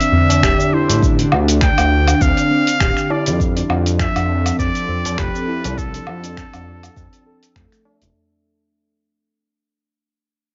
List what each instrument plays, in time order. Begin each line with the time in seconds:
Already playing: analog synth pad D3 C4 D4 D5, muted trumpet E5
0.01 closed hi-hat, cabasa
0.12 handpan C4, tabla ge
0.30 closed hi-hat, tabla na, tabla ge, cabasa
0.43 analog synth bass D1, handpan G4, finger snap, kick, cabasa
0.59 tabla tin, cabasa
0.73 handpan E4, muted trumpet C5
0.88 analog synth bass A1, closed hi-hat, tabla na, tabla tin, cabasa
1.03 kick, cabasa
1.19 handpan D4, closed hi-hat, cabasa
1.32 analog synth bass D2, low woodblock
1.48 handpan D4, closed hi-hat, cabasa
1.61 muted trumpet G5, finger snap, kick, cabasa
1.78 analog synth bass D2, handpan D4, closed hi-hat, cabasa, low woodblock
1.91 tabla tin
2.08 closed hi-hat, cabasa, low woodblock
2.21 analog synth bass D2, handpan C4, muted trumpet F5, kick, cabasa
2.37 closed hi-hat, tabla tin, cabasa
2.51 handpan C4
2.67 closed hi-hat, cabasa
2.80 analog synth bass D1, handpan G4, finger snap, kick, cabasa
2.97 finger snap, cabasa
3.10 handpan E4, muted trumpet D5, tabla na, tabla tin
3.26 analog synth bass F2, closed hi-hat, cabasa
3.40 analog synth pad F3, kick, cabasa
3.56 analog synth pad C4, handpan D4, closed hi-hat, cabasa
3.70 analog synth bass F2, low woodblock
3.86 handpan D4, closed hi-hat, tabla na, cabasa
3.99 muted trumpet E5, finger snap, kick, cabasa
4.07 analog synth pad A4
4.16 analog synth bass F2, handpan D4, closed hi-hat, cabasa, low woodblock
4.29 tabla na, tabla tin
4.46 closed hi-hat, cabasa, low woodblock
4.59 analog synth bass F2, handpan C4, muted trumpet D5, kick, cabasa
4.75 closed hi-hat, cabasa
4.89 handpan C4, tabla ge
5.05 closed hi-hat, tabla na, tabla ge, cabasa
5.18 analog synth bass F1, handpan G4, muted trumpet B4, finger snap, kick, cabasa
5.35 tabla tin, cabasa
5.48 handpan E4
5.64 analog synth bass C2, closed hi-hat, tabla na, tabla tin, cabasa
5.78 muted trumpet A4, kick, cabasa
5.94 handpan D4, closed hi-hat, cabasa
6.07 analog synth bass F2, low woodblock
6.23 handpan D4, closed hi-hat, tabla na, cabasa
6.37 finger snap, kick, cabasa
6.53 analog synth bass F2, handpan D4, closed hi-hat, tabla ge, cabasa, low woodblock
6.66 tabla na, tabla tin
6.83 closed hi-hat, cabasa, low woodblock
6.96 analog synth bass F2, handpan C4, kick, cabasa
7.12 closed hi-hat, tabla tin, cabasa
7.26 handpan A4
7.43 closed hi-hat, cabasa
7.56 analog synth bass F2, handpan A3, finger snap, kick, cabasa
7.72 handpan A3, finger snap, closed hi-hat, cabasa
7.85 handpan D4, tabla na, tabla tin
8.02 analog synth bass F1, closed hi-hat, tabla ge, cabasa